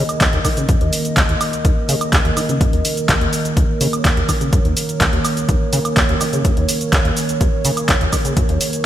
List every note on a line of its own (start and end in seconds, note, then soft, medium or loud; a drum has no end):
0.00 8.86 D#3 medium
0.00 8.86 A#3 medium
0.00 8.86 A#4 medium
0.00 3.53 D#5 medium
0.09 closed hi-hat medium
0.09 high woodblock medium
0.09 shaker soft
0.21 0.28 D#2 medium
0.21 kick loud
0.21 clap loud
0.21 closed hi-hat medium
0.21 shaker soft
0.33 0.40 D#2 medium
0.33 closed hi-hat soft
0.45 0.49 D#3 medium
0.45 kick medium
0.45 open hi-hat medium
0.45 high woodblock medium
0.45 shaker medium
0.57 0.67 C#3 medium
0.57 closed hi-hat soft
0.57 shaker soft
0.69 0.76 F#2 medium
0.69 kick loud
0.69 closed hi-hat medium
0.69 shaker soft
0.81 0.91 D#2 medium
0.81 closed hi-hat soft
0.93 open hi-hat loud
0.93 shaker medium
1.05 closed hi-hat medium
1.05 shaker soft
1.17 1.24 C#2 loud
1.17 kick loud
1.17 clap loud
1.17 closed hi-hat medium
1.17 shaker soft
1.29 1.35 D#2 medium
1.29 closed hi-hat soft
1.41 open hi-hat medium
1.41 high woodblock medium
1.41 shaker medium
1.53 closed hi-hat medium
1.53 shaker soft
1.65 1.71 D#2 medium
1.65 kick loud
1.65 closed hi-hat medium
1.65 shaker soft
1.89 1.95 C#3 medium
1.89 open hi-hat loud
1.89 shaker medium
2.01 closed hi-hat soft
2.01 high woodblock medium
2.01 shaker soft
2.13 2.20 D#2 medium
2.13 kick loud
2.13 clap loud
2.13 closed hi-hat medium
2.13 shaker soft
2.25 2.32 D#2 medium
2.25 closed hi-hat soft
2.37 2.41 D#3 medium
2.37 open hi-hat medium
2.37 high woodblock medium
2.37 shaker medium
2.49 2.59 C#3 medium
2.49 closed hi-hat soft
2.49 shaker soft
2.61 2.67 F#2 medium
2.61 kick loud
2.61 closed hi-hat medium
2.61 shaker soft
2.73 2.83 D#2 medium
2.73 closed hi-hat soft
2.85 open hi-hat loud
2.85 shaker medium
2.97 closed hi-hat soft
2.97 shaker soft
3.09 3.16 C#2 loud
3.09 kick loud
3.09 clap loud
3.09 closed hi-hat medium
3.09 shaker soft
3.21 3.27 D#2 medium
3.21 closed hi-hat soft
3.33 open hi-hat medium
3.33 shaker medium
3.45 closed hi-hat medium
3.45 shaker soft
3.57 3.64 D#2 medium
3.57 8.86 C#5 medium
3.57 kick loud
3.57 closed hi-hat medium
3.57 shaker soft
3.81 3.88 C#3 loud
3.81 open hi-hat loud
3.81 shaker medium
3.93 closed hi-hat medium
3.93 high woodblock medium
3.93 shaker soft
4.05 4.11 D#2 medium
4.05 kick loud
4.05 clap loud
4.05 closed hi-hat medium
4.05 shaker soft
4.17 4.23 D#2 medium
4.17 closed hi-hat soft
4.29 4.33 D#3 medium
4.29 kick medium
4.29 open hi-hat medium
4.29 high woodblock medium
4.29 shaker medium
4.41 4.51 C#3 medium
4.41 closed hi-hat soft
4.41 shaker soft
4.53 4.59 F#2 medium
4.53 kick loud
4.53 closed hi-hat medium
4.53 shaker soft
4.65 4.75 D#2 medium
4.65 closed hi-hat soft
4.77 open hi-hat loud
4.77 shaker medium
4.89 closed hi-hat medium
4.89 shaker soft
5.01 5.07 C#2 loud
5.01 kick loud
5.01 clap loud
5.01 closed hi-hat medium
5.01 shaker soft
5.13 5.19 D#2 medium
5.13 closed hi-hat soft
5.25 open hi-hat medium
5.25 high woodblock medium
5.25 shaker medium
5.37 closed hi-hat medium
5.37 shaker soft
5.49 5.55 D#2 medium
5.49 kick loud
5.49 closed hi-hat medium
5.49 shaker soft
5.73 5.79 C#3 loud
5.73 open hi-hat loud
5.73 shaker medium
5.85 closed hi-hat soft
5.85 high woodblock medium
5.85 shaker soft
5.97 6.03 D#2 medium
5.97 kick loud
5.97 clap loud
5.97 closed hi-hat medium
5.97 shaker soft
6.09 6.15 D#2 medium
6.09 closed hi-hat soft
6.21 6.25 D#3 medium
6.21 open hi-hat medium
6.21 high woodblock medium
6.21 shaker medium
6.33 6.43 C#3 medium
6.33 closed hi-hat soft
6.33 shaker soft
6.45 6.51 F#2 medium
6.45 kick loud
6.45 closed hi-hat medium
6.45 shaker soft
6.57 6.67 D#2 medium
6.57 closed hi-hat soft
6.69 open hi-hat loud
6.69 shaker medium
6.81 closed hi-hat medium
6.81 shaker soft
6.93 6.99 C#2 loud
6.93 kick loud
6.93 clap loud
6.93 closed hi-hat medium
6.93 shaker soft
7.05 7.11 D#2 medium
7.05 closed hi-hat soft
7.17 open hi-hat medium
7.17 shaker medium
7.29 closed hi-hat medium
7.29 shaker soft
7.41 7.47 D#2 medium
7.41 kick loud
7.41 closed hi-hat medium
7.41 shaker soft
7.65 7.72 C#3 loud
7.65 open hi-hat medium
7.65 shaker medium
7.77 closed hi-hat medium
7.77 high woodblock medium
7.77 shaker soft
7.89 7.96 D#2 medium
7.89 kick loud
7.89 clap loud
7.89 closed hi-hat medium
7.89 shaker soft
8.01 8.07 D#2 medium
8.01 closed hi-hat soft
8.13 8.17 D#3 medium
8.13 kick medium
8.13 open hi-hat medium
8.13 high woodblock medium
8.13 shaker medium
8.25 8.35 C#3 medium
8.25 closed hi-hat medium
8.25 shaker soft
8.37 8.43 F#2 medium
8.37 kick loud
8.37 closed hi-hat medium
8.37 shaker soft
8.49 8.59 D#2 medium
8.49 closed hi-hat soft
8.61 open hi-hat loud
8.61 shaker medium
8.73 closed hi-hat medium
8.73 shaker soft